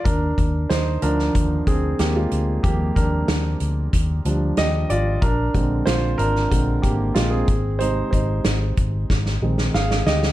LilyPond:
<<
  \new Staff \with { instrumentName = "Grand piano" } { \time 4/4 \key ees \major \tempo 4 = 93 <d' bes'>4 <ees' c''>8 bes'4 <c' aes'>8 <bes g'>16 <aes f'>8. | <bes g'>8 <d' bes'>4 r4. <g' ees''>8 <f' d''>8 | <d' bes'>4 <f' c''>8 <d' bes'>4 <bes g'>8 <aes f'>16 <c' aes'>8. | <ees' c''>8 <ees' c''>4 r4. <aes' f''>8 <g' ees''>8 | }
  \new Staff \with { instrumentName = "Grand piano" } { \clef bass \time 4/4 \key ees \major r4. <d f d'>2~ <d f d'>8 | <f g>2~ <f g>8 <f g d'>8 r4 | r8 <d aes c'>4. <d aes c'>8 r4. | <c aes c'>2~ <c aes c'>8 <ees aes c'>8 r4 | }
  \new Staff \with { instrumentName = "Fingered electric bass" } { \clef bass \time 4/4 \key ees \major ees,8 ees,8 ees,8 d,8 ees,8 d,8 ees,8 d,8 | ees,8 ees,8 ees,8 d,8 ees,8 d,8 ees,8 aes,,8 | bes,,8 bes,,8 bes,,8 aes,,8 bes,,8 aes,,8 bes,,8 aes,,8~ | aes,,8 aes,,8 aes,,8 aes,,8 aes,,8 bes,,8 aes,,8 d,8 | }
  \new DrumStaff \with { instrumentName = "Drums" } \drummode { \time 4/4 <hh bd>8 <hh bd>8 <hh sn>8 hh16 sn16 <hh bd>8 <hh bd>8 <hh sn>8 hh8 | <hh bd>8 <hh bd>8 <hh sn>8 hh8 <hh bd>8 hh8 <hh sn>8 hh8 | <hh bd>8 <hh bd>8 <hh sn>8 hh16 sn16 <hh bd>8 <hh bd>8 <hh sn>8 <hh bd>8 | hh8 <hh bd>8 <hh sn>8 <hh bd>8 <bd sn>16 sn8 sn16 sn16 sn16 sn16 sn16 | }
>>